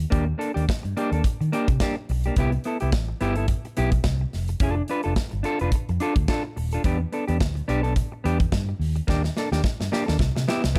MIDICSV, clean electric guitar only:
0, 0, Header, 1, 3, 480
1, 0, Start_track
1, 0, Tempo, 559701
1, 105, Time_signature, 4, 2, 24, 8
1, 9252, End_track
2, 0, Start_track
2, 0, Title_t, "Clean electric guitar"
2, 0, Program_c, 0, 27
2, 88, Note_on_c, 0, 58, 86
2, 95, Note_on_c, 0, 62, 92
2, 103, Note_on_c, 0, 67, 91
2, 218, Note_off_c, 0, 67, 0
2, 220, Note_off_c, 0, 58, 0
2, 223, Note_off_c, 0, 62, 0
2, 326, Note_on_c, 0, 58, 56
2, 332, Note_on_c, 0, 62, 80
2, 336, Note_on_c, 0, 69, 78
2, 432, Note_off_c, 0, 58, 0
2, 435, Note_off_c, 0, 62, 0
2, 437, Note_off_c, 0, 69, 0
2, 466, Note_on_c, 0, 67, 68
2, 476, Note_on_c, 0, 62, 60
2, 481, Note_on_c, 0, 58, 46
2, 549, Note_off_c, 0, 67, 0
2, 554, Note_off_c, 0, 62, 0
2, 557, Note_off_c, 0, 58, 0
2, 829, Note_on_c, 0, 58, 96
2, 830, Note_on_c, 0, 62, 99
2, 841, Note_on_c, 0, 67, 105
2, 951, Note_off_c, 0, 58, 0
2, 952, Note_off_c, 0, 62, 0
2, 957, Note_off_c, 0, 67, 0
2, 967, Note_on_c, 0, 69, 57
2, 979, Note_on_c, 0, 62, 60
2, 981, Note_on_c, 0, 58, 52
2, 1040, Note_off_c, 0, 69, 0
2, 1046, Note_off_c, 0, 62, 0
2, 1047, Note_off_c, 0, 58, 0
2, 1307, Note_on_c, 0, 58, 97
2, 1313, Note_on_c, 0, 62, 93
2, 1322, Note_on_c, 0, 67, 91
2, 1431, Note_off_c, 0, 58, 0
2, 1434, Note_off_c, 0, 62, 0
2, 1438, Note_off_c, 0, 67, 0
2, 1549, Note_on_c, 0, 58, 88
2, 1556, Note_on_c, 0, 62, 96
2, 1568, Note_on_c, 0, 67, 94
2, 1672, Note_off_c, 0, 58, 0
2, 1676, Note_off_c, 0, 62, 0
2, 1682, Note_off_c, 0, 67, 0
2, 1935, Note_on_c, 0, 67, 64
2, 1944, Note_on_c, 0, 62, 55
2, 1948, Note_on_c, 0, 58, 54
2, 2005, Note_off_c, 0, 67, 0
2, 2010, Note_off_c, 0, 62, 0
2, 2012, Note_off_c, 0, 58, 0
2, 2042, Note_on_c, 0, 59, 86
2, 2049, Note_on_c, 0, 64, 76
2, 2058, Note_on_c, 0, 67, 93
2, 2158, Note_off_c, 0, 67, 0
2, 2159, Note_off_c, 0, 59, 0
2, 2162, Note_off_c, 0, 64, 0
2, 2275, Note_on_c, 0, 59, 73
2, 2281, Note_on_c, 0, 64, 69
2, 2291, Note_on_c, 0, 69, 73
2, 2369, Note_off_c, 0, 59, 0
2, 2372, Note_off_c, 0, 64, 0
2, 2377, Note_off_c, 0, 69, 0
2, 2406, Note_on_c, 0, 67, 70
2, 2414, Note_on_c, 0, 64, 54
2, 2422, Note_on_c, 0, 59, 57
2, 2481, Note_off_c, 0, 67, 0
2, 2485, Note_off_c, 0, 64, 0
2, 2489, Note_off_c, 0, 59, 0
2, 2749, Note_on_c, 0, 59, 98
2, 2754, Note_on_c, 0, 64, 100
2, 2763, Note_on_c, 0, 67, 109
2, 2873, Note_off_c, 0, 59, 0
2, 2875, Note_off_c, 0, 64, 0
2, 2879, Note_off_c, 0, 67, 0
2, 2887, Note_on_c, 0, 69, 55
2, 2896, Note_on_c, 0, 64, 60
2, 2901, Note_on_c, 0, 59, 47
2, 2961, Note_off_c, 0, 69, 0
2, 2966, Note_off_c, 0, 64, 0
2, 2968, Note_off_c, 0, 59, 0
2, 3231, Note_on_c, 0, 59, 70
2, 3236, Note_on_c, 0, 64, 85
2, 3243, Note_on_c, 0, 67, 99
2, 3354, Note_off_c, 0, 59, 0
2, 3354, Note_off_c, 0, 67, 0
2, 3356, Note_off_c, 0, 64, 0
2, 3956, Note_on_c, 0, 62, 81
2, 3963, Note_on_c, 0, 65, 77
2, 3973, Note_on_c, 0, 69, 90
2, 4081, Note_off_c, 0, 69, 0
2, 4090, Note_off_c, 0, 65, 0
2, 4131, Note_off_c, 0, 62, 0
2, 4198, Note_on_c, 0, 62, 74
2, 4207, Note_on_c, 0, 65, 76
2, 4208, Note_on_c, 0, 71, 83
2, 4290, Note_off_c, 0, 62, 0
2, 4295, Note_off_c, 0, 65, 0
2, 4295, Note_off_c, 0, 71, 0
2, 4320, Note_on_c, 0, 69, 74
2, 4328, Note_on_c, 0, 65, 57
2, 4335, Note_on_c, 0, 62, 59
2, 4398, Note_off_c, 0, 69, 0
2, 4402, Note_off_c, 0, 65, 0
2, 4405, Note_off_c, 0, 62, 0
2, 4658, Note_on_c, 0, 62, 83
2, 4669, Note_on_c, 0, 65, 84
2, 4677, Note_on_c, 0, 69, 111
2, 4787, Note_off_c, 0, 62, 0
2, 4792, Note_off_c, 0, 65, 0
2, 4796, Note_off_c, 0, 69, 0
2, 4812, Note_on_c, 0, 71, 67
2, 4819, Note_on_c, 0, 65, 67
2, 4828, Note_on_c, 0, 62, 59
2, 4884, Note_off_c, 0, 71, 0
2, 4887, Note_off_c, 0, 65, 0
2, 4892, Note_off_c, 0, 62, 0
2, 5148, Note_on_c, 0, 62, 79
2, 5158, Note_on_c, 0, 65, 94
2, 5166, Note_on_c, 0, 69, 100
2, 5272, Note_off_c, 0, 62, 0
2, 5273, Note_off_c, 0, 69, 0
2, 5277, Note_off_c, 0, 65, 0
2, 5388, Note_on_c, 0, 62, 92
2, 5396, Note_on_c, 0, 65, 89
2, 5401, Note_on_c, 0, 69, 105
2, 5511, Note_off_c, 0, 62, 0
2, 5516, Note_off_c, 0, 65, 0
2, 5518, Note_off_c, 0, 69, 0
2, 5769, Note_on_c, 0, 69, 58
2, 5782, Note_on_c, 0, 65, 55
2, 5786, Note_on_c, 0, 62, 53
2, 5841, Note_off_c, 0, 69, 0
2, 5848, Note_off_c, 0, 65, 0
2, 5850, Note_off_c, 0, 62, 0
2, 5876, Note_on_c, 0, 59, 93
2, 5879, Note_on_c, 0, 62, 80
2, 5885, Note_on_c, 0, 67, 90
2, 5990, Note_off_c, 0, 67, 0
2, 5995, Note_off_c, 0, 59, 0
2, 5997, Note_off_c, 0, 62, 0
2, 6110, Note_on_c, 0, 59, 67
2, 6119, Note_on_c, 0, 62, 74
2, 6120, Note_on_c, 0, 69, 73
2, 6205, Note_off_c, 0, 59, 0
2, 6209, Note_off_c, 0, 62, 0
2, 6210, Note_off_c, 0, 69, 0
2, 6239, Note_on_c, 0, 67, 76
2, 6250, Note_on_c, 0, 62, 68
2, 6251, Note_on_c, 0, 59, 61
2, 6316, Note_off_c, 0, 67, 0
2, 6322, Note_off_c, 0, 59, 0
2, 6322, Note_off_c, 0, 62, 0
2, 6585, Note_on_c, 0, 59, 89
2, 6589, Note_on_c, 0, 62, 113
2, 6601, Note_on_c, 0, 67, 99
2, 6709, Note_off_c, 0, 59, 0
2, 6711, Note_off_c, 0, 62, 0
2, 6714, Note_off_c, 0, 67, 0
2, 6717, Note_on_c, 0, 69, 78
2, 6724, Note_on_c, 0, 62, 67
2, 6734, Note_on_c, 0, 59, 55
2, 6795, Note_off_c, 0, 69, 0
2, 6798, Note_off_c, 0, 62, 0
2, 6803, Note_off_c, 0, 59, 0
2, 7067, Note_on_c, 0, 59, 84
2, 7079, Note_on_c, 0, 62, 80
2, 7080, Note_on_c, 0, 67, 93
2, 7190, Note_off_c, 0, 59, 0
2, 7196, Note_off_c, 0, 62, 0
2, 7196, Note_off_c, 0, 67, 0
2, 7781, Note_on_c, 0, 58, 84
2, 7794, Note_on_c, 0, 62, 83
2, 7800, Note_on_c, 0, 67, 99
2, 7906, Note_off_c, 0, 58, 0
2, 7913, Note_off_c, 0, 62, 0
2, 7916, Note_off_c, 0, 67, 0
2, 8036, Note_on_c, 0, 58, 69
2, 8047, Note_on_c, 0, 62, 72
2, 8048, Note_on_c, 0, 69, 75
2, 8127, Note_off_c, 0, 58, 0
2, 8132, Note_off_c, 0, 62, 0
2, 8133, Note_off_c, 0, 69, 0
2, 8166, Note_on_c, 0, 67, 77
2, 8175, Note_on_c, 0, 62, 65
2, 8183, Note_on_c, 0, 58, 62
2, 8238, Note_off_c, 0, 67, 0
2, 8243, Note_off_c, 0, 62, 0
2, 8247, Note_off_c, 0, 58, 0
2, 8507, Note_on_c, 0, 58, 95
2, 8507, Note_on_c, 0, 62, 96
2, 8516, Note_on_c, 0, 67, 103
2, 8626, Note_off_c, 0, 67, 0
2, 8629, Note_off_c, 0, 58, 0
2, 8629, Note_off_c, 0, 62, 0
2, 8629, Note_on_c, 0, 69, 65
2, 8640, Note_on_c, 0, 62, 52
2, 8645, Note_on_c, 0, 58, 54
2, 8710, Note_off_c, 0, 69, 0
2, 8716, Note_off_c, 0, 62, 0
2, 8718, Note_off_c, 0, 58, 0
2, 8986, Note_on_c, 0, 59, 88
2, 8995, Note_on_c, 0, 64, 97
2, 9001, Note_on_c, 0, 67, 101
2, 9109, Note_off_c, 0, 59, 0
2, 9113, Note_off_c, 0, 64, 0
2, 9116, Note_off_c, 0, 67, 0
2, 9217, Note_on_c, 0, 59, 88
2, 9252, Note_off_c, 0, 59, 0
2, 9252, End_track
3, 0, Start_track
3, 0, Title_t, "Muted clean electric guitar strokes"
3, 228, Note_on_c, 9, 29, 43
3, 314, Note_off_c, 9, 29, 0
3, 714, Note_on_c, 9, 29, 50
3, 799, Note_off_c, 9, 29, 0
3, 1077, Note_on_c, 9, 29, 38
3, 1163, Note_off_c, 9, 29, 0
3, 1205, Note_on_c, 9, 29, 48
3, 1291, Note_off_c, 9, 29, 0
3, 1455, Note_on_c, 9, 29, 59
3, 1541, Note_off_c, 9, 29, 0
3, 1691, Note_on_c, 9, 29, 38
3, 1777, Note_off_c, 9, 29, 0
3, 1800, Note_on_c, 9, 29, 47
3, 1886, Note_off_c, 9, 29, 0
3, 2169, Note_on_c, 9, 29, 48
3, 2254, Note_off_c, 9, 29, 0
3, 2646, Note_on_c, 9, 29, 47
3, 2731, Note_off_c, 9, 29, 0
3, 3132, Note_on_c, 9, 29, 44
3, 3218, Note_off_c, 9, 29, 0
3, 3365, Note_on_c, 9, 29, 56
3, 3450, Note_off_c, 9, 29, 0
3, 3475, Note_on_c, 9, 29, 39
3, 3561, Note_off_c, 9, 29, 0
3, 3612, Note_on_c, 9, 29, 46
3, 3698, Note_off_c, 9, 29, 0
3, 3851, Note_on_c, 9, 29, 45
3, 3937, Note_off_c, 9, 29, 0
3, 4092, Note_on_c, 9, 29, 49
3, 4177, Note_off_c, 9, 29, 0
3, 4556, Note_on_c, 9, 29, 40
3, 4642, Note_off_c, 9, 29, 0
3, 4921, Note_on_c, 9, 29, 40
3, 5007, Note_off_c, 9, 29, 0
3, 5054, Note_on_c, 9, 29, 56
3, 5140, Note_off_c, 9, 29, 0
3, 5532, Note_on_c, 9, 29, 50
3, 5618, Note_off_c, 9, 29, 0
3, 5630, Note_on_c, 9, 29, 45
3, 5715, Note_off_c, 9, 29, 0
3, 6356, Note_on_c, 9, 29, 45
3, 6442, Note_off_c, 9, 29, 0
3, 6478, Note_on_c, 9, 29, 40
3, 6564, Note_off_c, 9, 29, 0
3, 6832, Note_on_c, 9, 29, 35
3, 6918, Note_off_c, 9, 29, 0
3, 6965, Note_on_c, 9, 29, 53
3, 7051, Note_off_c, 9, 29, 0
3, 7207, Note_on_c, 9, 29, 49
3, 7293, Note_off_c, 9, 29, 0
3, 7308, Note_on_c, 9, 29, 49
3, 7393, Note_off_c, 9, 29, 0
3, 7451, Note_on_c, 9, 29, 49
3, 7537, Note_off_c, 9, 29, 0
3, 7681, Note_on_c, 9, 29, 50
3, 7767, Note_off_c, 9, 29, 0
3, 8406, Note_on_c, 9, 29, 42
3, 8492, Note_off_c, 9, 29, 0
3, 8746, Note_on_c, 9, 29, 44
3, 8831, Note_off_c, 9, 29, 0
3, 8882, Note_on_c, 9, 29, 49
3, 8967, Note_off_c, 9, 29, 0
3, 9252, End_track
0, 0, End_of_file